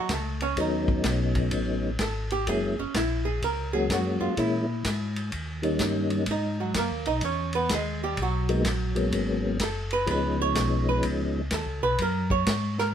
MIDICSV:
0, 0, Header, 1, 5, 480
1, 0, Start_track
1, 0, Tempo, 476190
1, 573, Time_signature, 4, 2, 24, 8
1, 13047, End_track
2, 0, Start_track
2, 0, Title_t, "Hollow-body jazz guitar"
2, 0, Program_c, 0, 26
2, 0, Note_on_c, 0, 54, 70
2, 103, Note_off_c, 0, 54, 0
2, 131, Note_on_c, 0, 57, 52
2, 138, Note_on_c, 0, 69, 53
2, 420, Note_off_c, 0, 57, 0
2, 421, Note_off_c, 0, 69, 0
2, 424, Note_on_c, 0, 61, 78
2, 428, Note_on_c, 0, 73, 77
2, 576, Note_off_c, 0, 61, 0
2, 576, Note_off_c, 0, 73, 0
2, 607, Note_on_c, 0, 63, 73
2, 607, Note_on_c, 0, 75, 75
2, 1036, Note_off_c, 0, 75, 0
2, 1038, Note_off_c, 0, 63, 0
2, 2031, Note_on_c, 0, 69, 77
2, 2330, Note_off_c, 0, 69, 0
2, 2339, Note_on_c, 0, 67, 97
2, 2493, Note_off_c, 0, 67, 0
2, 2511, Note_on_c, 0, 68, 95
2, 2809, Note_off_c, 0, 68, 0
2, 2817, Note_on_c, 0, 61, 70
2, 2972, Note_off_c, 0, 61, 0
2, 2988, Note_on_c, 0, 64, 82
2, 3278, Note_on_c, 0, 68, 83
2, 3288, Note_off_c, 0, 64, 0
2, 3442, Note_off_c, 0, 68, 0
2, 3469, Note_on_c, 0, 70, 90
2, 3758, Note_off_c, 0, 70, 0
2, 3762, Note_on_c, 0, 68, 91
2, 3924, Note_off_c, 0, 68, 0
2, 3950, Note_on_c, 0, 66, 77
2, 4235, Note_off_c, 0, 66, 0
2, 4239, Note_on_c, 0, 65, 81
2, 4402, Note_off_c, 0, 65, 0
2, 4425, Note_on_c, 0, 64, 81
2, 5337, Note_off_c, 0, 64, 0
2, 6359, Note_on_c, 0, 63, 68
2, 6360, Note_on_c, 0, 75, 74
2, 6651, Note_off_c, 0, 75, 0
2, 6652, Note_off_c, 0, 63, 0
2, 6656, Note_on_c, 0, 66, 51
2, 6663, Note_on_c, 0, 54, 40
2, 6810, Note_off_c, 0, 66, 0
2, 6813, Note_off_c, 0, 54, 0
2, 6829, Note_on_c, 0, 70, 78
2, 6837, Note_on_c, 0, 58, 63
2, 7124, Note_on_c, 0, 63, 81
2, 7127, Note_off_c, 0, 70, 0
2, 7130, Note_on_c, 0, 75, 82
2, 7131, Note_off_c, 0, 58, 0
2, 7284, Note_off_c, 0, 63, 0
2, 7285, Note_off_c, 0, 75, 0
2, 7302, Note_on_c, 0, 61, 59
2, 7303, Note_on_c, 0, 73, 71
2, 7602, Note_off_c, 0, 73, 0
2, 7604, Note_off_c, 0, 61, 0
2, 7611, Note_on_c, 0, 59, 65
2, 7613, Note_on_c, 0, 71, 80
2, 7766, Note_off_c, 0, 71, 0
2, 7767, Note_off_c, 0, 59, 0
2, 7788, Note_on_c, 0, 68, 83
2, 7797, Note_on_c, 0, 56, 70
2, 8086, Note_off_c, 0, 68, 0
2, 8091, Note_off_c, 0, 56, 0
2, 8101, Note_on_c, 0, 67, 89
2, 8105, Note_on_c, 0, 55, 67
2, 8252, Note_off_c, 0, 67, 0
2, 8254, Note_off_c, 0, 55, 0
2, 8287, Note_on_c, 0, 66, 81
2, 8292, Note_on_c, 0, 54, 65
2, 9187, Note_off_c, 0, 66, 0
2, 9190, Note_off_c, 0, 54, 0
2, 9712, Note_on_c, 0, 69, 74
2, 10008, Note_off_c, 0, 69, 0
2, 10008, Note_on_c, 0, 71, 99
2, 10165, Note_off_c, 0, 71, 0
2, 10190, Note_on_c, 0, 71, 86
2, 10487, Note_off_c, 0, 71, 0
2, 10499, Note_on_c, 0, 73, 109
2, 10939, Note_off_c, 0, 73, 0
2, 10975, Note_on_c, 0, 71, 85
2, 11129, Note_off_c, 0, 71, 0
2, 11634, Note_on_c, 0, 69, 75
2, 11925, Note_on_c, 0, 71, 102
2, 11930, Note_off_c, 0, 69, 0
2, 12084, Note_off_c, 0, 71, 0
2, 12117, Note_on_c, 0, 70, 89
2, 12406, Note_off_c, 0, 70, 0
2, 12410, Note_on_c, 0, 73, 98
2, 12857, Note_off_c, 0, 73, 0
2, 12897, Note_on_c, 0, 70, 94
2, 12993, Note_off_c, 0, 70, 0
2, 13047, End_track
3, 0, Start_track
3, 0, Title_t, "Tonewheel organ"
3, 0, Program_c, 1, 16
3, 581, Note_on_c, 1, 57, 55
3, 583, Note_on_c, 1, 54, 58
3, 585, Note_on_c, 1, 61, 54
3, 588, Note_on_c, 1, 59, 55
3, 590, Note_on_c, 1, 63, 69
3, 1919, Note_off_c, 1, 57, 0
3, 1920, Note_off_c, 1, 54, 0
3, 1921, Note_off_c, 1, 61, 0
3, 1923, Note_off_c, 1, 59, 0
3, 1924, Note_off_c, 1, 63, 0
3, 2491, Note_on_c, 1, 54, 60
3, 2494, Note_on_c, 1, 56, 55
3, 2497, Note_on_c, 1, 58, 54
3, 2503, Note_on_c, 1, 61, 53
3, 2507, Note_on_c, 1, 64, 67
3, 2777, Note_off_c, 1, 54, 0
3, 2779, Note_off_c, 1, 56, 0
3, 2780, Note_off_c, 1, 58, 0
3, 2783, Note_off_c, 1, 61, 0
3, 2785, Note_off_c, 1, 64, 0
3, 3765, Note_on_c, 1, 54, 64
3, 3765, Note_on_c, 1, 56, 62
3, 3771, Note_on_c, 1, 58, 61
3, 3776, Note_on_c, 1, 61, 60
3, 3780, Note_on_c, 1, 66, 72
3, 4378, Note_off_c, 1, 54, 0
3, 4378, Note_off_c, 1, 56, 0
3, 4380, Note_off_c, 1, 58, 0
3, 4383, Note_off_c, 1, 61, 0
3, 4385, Note_off_c, 1, 66, 0
3, 4406, Note_on_c, 1, 52, 62
3, 4409, Note_on_c, 1, 56, 59
3, 4414, Note_on_c, 1, 58, 56
3, 4418, Note_on_c, 1, 61, 60
3, 4426, Note_on_c, 1, 64, 71
3, 4694, Note_off_c, 1, 52, 0
3, 4696, Note_off_c, 1, 56, 0
3, 4698, Note_off_c, 1, 58, 0
3, 4700, Note_off_c, 1, 61, 0
3, 4704, Note_off_c, 1, 64, 0
3, 5668, Note_on_c, 1, 51, 71
3, 5671, Note_on_c, 1, 55, 64
3, 5678, Note_on_c, 1, 58, 61
3, 5685, Note_on_c, 1, 61, 63
3, 5688, Note_on_c, 1, 63, 75
3, 6288, Note_off_c, 1, 51, 0
3, 6290, Note_off_c, 1, 55, 0
3, 6293, Note_off_c, 1, 58, 0
3, 6297, Note_off_c, 1, 61, 0
3, 6298, Note_off_c, 1, 63, 0
3, 8559, Note_on_c, 1, 54, 63
3, 8560, Note_on_c, 1, 58, 60
3, 8561, Note_on_c, 1, 56, 59
3, 8566, Note_on_c, 1, 59, 60
3, 8570, Note_on_c, 1, 63, 72
3, 8709, Note_off_c, 1, 54, 0
3, 8710, Note_off_c, 1, 56, 0
3, 8710, Note_off_c, 1, 58, 0
3, 8713, Note_off_c, 1, 59, 0
3, 8715, Note_off_c, 1, 63, 0
3, 9027, Note_on_c, 1, 54, 71
3, 9032, Note_on_c, 1, 56, 66
3, 9032, Note_on_c, 1, 58, 66
3, 9039, Note_on_c, 1, 59, 66
3, 9043, Note_on_c, 1, 61, 75
3, 9646, Note_off_c, 1, 54, 0
3, 9649, Note_off_c, 1, 56, 0
3, 9649, Note_off_c, 1, 58, 0
3, 9653, Note_off_c, 1, 59, 0
3, 9655, Note_off_c, 1, 61, 0
3, 10146, Note_on_c, 1, 53, 61
3, 10149, Note_on_c, 1, 59, 55
3, 10150, Note_on_c, 1, 56, 59
3, 10153, Note_on_c, 1, 61, 57
3, 10166, Note_on_c, 1, 63, 69
3, 11500, Note_off_c, 1, 53, 0
3, 11502, Note_off_c, 1, 56, 0
3, 11502, Note_off_c, 1, 59, 0
3, 11504, Note_off_c, 1, 61, 0
3, 11510, Note_off_c, 1, 63, 0
3, 13047, End_track
4, 0, Start_track
4, 0, Title_t, "Tonewheel organ"
4, 0, Program_c, 2, 16
4, 94, Note_on_c, 2, 37, 86
4, 559, Note_off_c, 2, 37, 0
4, 572, Note_on_c, 2, 39, 82
4, 1038, Note_off_c, 2, 39, 0
4, 1053, Note_on_c, 2, 35, 91
4, 1519, Note_off_c, 2, 35, 0
4, 1529, Note_on_c, 2, 33, 75
4, 1997, Note_off_c, 2, 33, 0
4, 2008, Note_on_c, 2, 32, 90
4, 2476, Note_off_c, 2, 32, 0
4, 2485, Note_on_c, 2, 30, 85
4, 2783, Note_off_c, 2, 30, 0
4, 2806, Note_on_c, 2, 30, 41
4, 2888, Note_off_c, 2, 30, 0
4, 2967, Note_on_c, 2, 34, 90
4, 3435, Note_off_c, 2, 34, 0
4, 3448, Note_on_c, 2, 37, 75
4, 3916, Note_off_c, 2, 37, 0
4, 3926, Note_on_c, 2, 42, 92
4, 4224, Note_off_c, 2, 42, 0
4, 4244, Note_on_c, 2, 42, 37
4, 4327, Note_off_c, 2, 42, 0
4, 4405, Note_on_c, 2, 46, 88
4, 4874, Note_off_c, 2, 46, 0
4, 4883, Note_on_c, 2, 44, 84
4, 5353, Note_off_c, 2, 44, 0
4, 5363, Note_on_c, 2, 39, 74
4, 5833, Note_off_c, 2, 39, 0
4, 5839, Note_on_c, 2, 43, 85
4, 6310, Note_off_c, 2, 43, 0
4, 6319, Note_on_c, 2, 44, 81
4, 6790, Note_off_c, 2, 44, 0
4, 6798, Note_on_c, 2, 42, 82
4, 6959, Note_off_c, 2, 42, 0
4, 6965, Note_on_c, 2, 39, 55
4, 7127, Note_off_c, 2, 39, 0
4, 7127, Note_on_c, 2, 35, 62
4, 7277, Note_off_c, 2, 35, 0
4, 7280, Note_on_c, 2, 40, 82
4, 7750, Note_off_c, 2, 40, 0
4, 7759, Note_on_c, 2, 39, 86
4, 8229, Note_off_c, 2, 39, 0
4, 8236, Note_on_c, 2, 35, 85
4, 8708, Note_off_c, 2, 35, 0
4, 8716, Note_on_c, 2, 34, 85
4, 9188, Note_off_c, 2, 34, 0
4, 9196, Note_on_c, 2, 32, 76
4, 9668, Note_off_c, 2, 32, 0
4, 9676, Note_on_c, 2, 30, 95
4, 10148, Note_off_c, 2, 30, 0
4, 10155, Note_on_c, 2, 37, 87
4, 10628, Note_off_c, 2, 37, 0
4, 10635, Note_on_c, 2, 35, 90
4, 11108, Note_off_c, 2, 35, 0
4, 11113, Note_on_c, 2, 37, 82
4, 11587, Note_off_c, 2, 37, 0
4, 11597, Note_on_c, 2, 39, 89
4, 11750, Note_on_c, 2, 37, 59
4, 11759, Note_off_c, 2, 39, 0
4, 11908, Note_on_c, 2, 35, 62
4, 11920, Note_off_c, 2, 37, 0
4, 12068, Note_off_c, 2, 35, 0
4, 12079, Note_on_c, 2, 42, 92
4, 12551, Note_off_c, 2, 42, 0
4, 12564, Note_on_c, 2, 44, 97
4, 13035, Note_off_c, 2, 44, 0
4, 13047, End_track
5, 0, Start_track
5, 0, Title_t, "Drums"
5, 90, Note_on_c, 9, 44, 52
5, 90, Note_on_c, 9, 51, 65
5, 91, Note_on_c, 9, 36, 18
5, 94, Note_on_c, 9, 38, 68
5, 190, Note_off_c, 9, 44, 0
5, 190, Note_off_c, 9, 51, 0
5, 192, Note_off_c, 9, 36, 0
5, 194, Note_off_c, 9, 38, 0
5, 408, Note_on_c, 9, 51, 47
5, 508, Note_off_c, 9, 51, 0
5, 571, Note_on_c, 9, 51, 57
5, 573, Note_on_c, 9, 36, 18
5, 672, Note_off_c, 9, 51, 0
5, 674, Note_off_c, 9, 36, 0
5, 888, Note_on_c, 9, 36, 58
5, 988, Note_off_c, 9, 36, 0
5, 1044, Note_on_c, 9, 44, 55
5, 1044, Note_on_c, 9, 51, 68
5, 1048, Note_on_c, 9, 38, 71
5, 1050, Note_on_c, 9, 36, 24
5, 1145, Note_off_c, 9, 44, 0
5, 1145, Note_off_c, 9, 51, 0
5, 1149, Note_off_c, 9, 38, 0
5, 1151, Note_off_c, 9, 36, 0
5, 1360, Note_on_c, 9, 51, 48
5, 1366, Note_on_c, 9, 36, 47
5, 1461, Note_off_c, 9, 51, 0
5, 1467, Note_off_c, 9, 36, 0
5, 1522, Note_on_c, 9, 51, 61
5, 1529, Note_on_c, 9, 36, 20
5, 1623, Note_off_c, 9, 51, 0
5, 1630, Note_off_c, 9, 36, 0
5, 2002, Note_on_c, 9, 44, 58
5, 2002, Note_on_c, 9, 51, 66
5, 2006, Note_on_c, 9, 38, 72
5, 2008, Note_on_c, 9, 36, 20
5, 2103, Note_off_c, 9, 44, 0
5, 2103, Note_off_c, 9, 51, 0
5, 2107, Note_off_c, 9, 38, 0
5, 2109, Note_off_c, 9, 36, 0
5, 2322, Note_on_c, 9, 51, 45
5, 2423, Note_off_c, 9, 51, 0
5, 2488, Note_on_c, 9, 51, 65
5, 2489, Note_on_c, 9, 36, 18
5, 2589, Note_off_c, 9, 36, 0
5, 2589, Note_off_c, 9, 51, 0
5, 2967, Note_on_c, 9, 44, 57
5, 2967, Note_on_c, 9, 51, 73
5, 2969, Note_on_c, 9, 36, 23
5, 2971, Note_on_c, 9, 38, 71
5, 3067, Note_off_c, 9, 44, 0
5, 3067, Note_off_c, 9, 51, 0
5, 3069, Note_off_c, 9, 36, 0
5, 3071, Note_off_c, 9, 38, 0
5, 3449, Note_on_c, 9, 36, 20
5, 3450, Note_on_c, 9, 51, 61
5, 3550, Note_off_c, 9, 36, 0
5, 3551, Note_off_c, 9, 51, 0
5, 3928, Note_on_c, 9, 36, 24
5, 3929, Note_on_c, 9, 44, 54
5, 3929, Note_on_c, 9, 51, 63
5, 3933, Note_on_c, 9, 38, 72
5, 4029, Note_off_c, 9, 36, 0
5, 4030, Note_off_c, 9, 44, 0
5, 4030, Note_off_c, 9, 51, 0
5, 4034, Note_off_c, 9, 38, 0
5, 4406, Note_on_c, 9, 51, 58
5, 4408, Note_on_c, 9, 36, 21
5, 4507, Note_off_c, 9, 51, 0
5, 4508, Note_off_c, 9, 36, 0
5, 4883, Note_on_c, 9, 44, 62
5, 4883, Note_on_c, 9, 51, 69
5, 4886, Note_on_c, 9, 36, 25
5, 4887, Note_on_c, 9, 38, 73
5, 4984, Note_off_c, 9, 44, 0
5, 4984, Note_off_c, 9, 51, 0
5, 4986, Note_off_c, 9, 36, 0
5, 4988, Note_off_c, 9, 38, 0
5, 5203, Note_on_c, 9, 51, 48
5, 5304, Note_off_c, 9, 51, 0
5, 5362, Note_on_c, 9, 51, 55
5, 5364, Note_on_c, 9, 36, 21
5, 5462, Note_off_c, 9, 51, 0
5, 5464, Note_off_c, 9, 36, 0
5, 5676, Note_on_c, 9, 51, 45
5, 5777, Note_off_c, 9, 51, 0
5, 5836, Note_on_c, 9, 44, 59
5, 5836, Note_on_c, 9, 51, 66
5, 5840, Note_on_c, 9, 38, 73
5, 5841, Note_on_c, 9, 36, 21
5, 5937, Note_off_c, 9, 44, 0
5, 5937, Note_off_c, 9, 51, 0
5, 5941, Note_off_c, 9, 38, 0
5, 5942, Note_off_c, 9, 36, 0
5, 6150, Note_on_c, 9, 51, 46
5, 6251, Note_off_c, 9, 51, 0
5, 6311, Note_on_c, 9, 51, 63
5, 6318, Note_on_c, 9, 36, 19
5, 6411, Note_off_c, 9, 51, 0
5, 6419, Note_off_c, 9, 36, 0
5, 6796, Note_on_c, 9, 44, 65
5, 6796, Note_on_c, 9, 51, 69
5, 6800, Note_on_c, 9, 36, 23
5, 6800, Note_on_c, 9, 38, 70
5, 6897, Note_off_c, 9, 44, 0
5, 6897, Note_off_c, 9, 51, 0
5, 6900, Note_off_c, 9, 36, 0
5, 6901, Note_off_c, 9, 38, 0
5, 7111, Note_on_c, 9, 51, 46
5, 7212, Note_off_c, 9, 51, 0
5, 7268, Note_on_c, 9, 51, 56
5, 7277, Note_on_c, 9, 36, 19
5, 7368, Note_off_c, 9, 51, 0
5, 7378, Note_off_c, 9, 36, 0
5, 7586, Note_on_c, 9, 51, 48
5, 7687, Note_off_c, 9, 51, 0
5, 7754, Note_on_c, 9, 44, 59
5, 7754, Note_on_c, 9, 51, 72
5, 7758, Note_on_c, 9, 38, 72
5, 7759, Note_on_c, 9, 36, 21
5, 7855, Note_off_c, 9, 44, 0
5, 7855, Note_off_c, 9, 51, 0
5, 7859, Note_off_c, 9, 38, 0
5, 7860, Note_off_c, 9, 36, 0
5, 8236, Note_on_c, 9, 51, 58
5, 8241, Note_on_c, 9, 36, 26
5, 8337, Note_off_c, 9, 51, 0
5, 8342, Note_off_c, 9, 36, 0
5, 8555, Note_on_c, 9, 51, 50
5, 8656, Note_off_c, 9, 51, 0
5, 8714, Note_on_c, 9, 44, 55
5, 8714, Note_on_c, 9, 51, 71
5, 8718, Note_on_c, 9, 38, 71
5, 8719, Note_on_c, 9, 36, 25
5, 8815, Note_off_c, 9, 44, 0
5, 8815, Note_off_c, 9, 51, 0
5, 8819, Note_off_c, 9, 38, 0
5, 8820, Note_off_c, 9, 36, 0
5, 9031, Note_on_c, 9, 51, 46
5, 9132, Note_off_c, 9, 51, 0
5, 9196, Note_on_c, 9, 51, 59
5, 9198, Note_on_c, 9, 36, 22
5, 9297, Note_off_c, 9, 51, 0
5, 9298, Note_off_c, 9, 36, 0
5, 9671, Note_on_c, 9, 44, 58
5, 9671, Note_on_c, 9, 51, 80
5, 9675, Note_on_c, 9, 38, 71
5, 9676, Note_on_c, 9, 36, 20
5, 9772, Note_off_c, 9, 44, 0
5, 9772, Note_off_c, 9, 51, 0
5, 9776, Note_off_c, 9, 38, 0
5, 9777, Note_off_c, 9, 36, 0
5, 9984, Note_on_c, 9, 51, 47
5, 10085, Note_off_c, 9, 51, 0
5, 10152, Note_on_c, 9, 51, 61
5, 10155, Note_on_c, 9, 36, 25
5, 10253, Note_off_c, 9, 51, 0
5, 10255, Note_off_c, 9, 36, 0
5, 10636, Note_on_c, 9, 36, 23
5, 10637, Note_on_c, 9, 44, 60
5, 10637, Note_on_c, 9, 51, 67
5, 10641, Note_on_c, 9, 38, 71
5, 10737, Note_off_c, 9, 36, 0
5, 10738, Note_off_c, 9, 44, 0
5, 10738, Note_off_c, 9, 51, 0
5, 10742, Note_off_c, 9, 38, 0
5, 11115, Note_on_c, 9, 51, 62
5, 11117, Note_on_c, 9, 36, 21
5, 11216, Note_off_c, 9, 51, 0
5, 11218, Note_off_c, 9, 36, 0
5, 11597, Note_on_c, 9, 44, 62
5, 11597, Note_on_c, 9, 51, 71
5, 11600, Note_on_c, 9, 36, 22
5, 11601, Note_on_c, 9, 38, 68
5, 11698, Note_off_c, 9, 44, 0
5, 11698, Note_off_c, 9, 51, 0
5, 11701, Note_off_c, 9, 36, 0
5, 11702, Note_off_c, 9, 38, 0
5, 12080, Note_on_c, 9, 51, 66
5, 12083, Note_on_c, 9, 36, 23
5, 12181, Note_off_c, 9, 51, 0
5, 12184, Note_off_c, 9, 36, 0
5, 12401, Note_on_c, 9, 36, 47
5, 12501, Note_off_c, 9, 36, 0
5, 12564, Note_on_c, 9, 44, 53
5, 12564, Note_on_c, 9, 51, 70
5, 12565, Note_on_c, 9, 36, 21
5, 12568, Note_on_c, 9, 38, 71
5, 12665, Note_off_c, 9, 44, 0
5, 12665, Note_off_c, 9, 51, 0
5, 12666, Note_off_c, 9, 36, 0
5, 12669, Note_off_c, 9, 38, 0
5, 12886, Note_on_c, 9, 38, 38
5, 12987, Note_off_c, 9, 38, 0
5, 13047, End_track
0, 0, End_of_file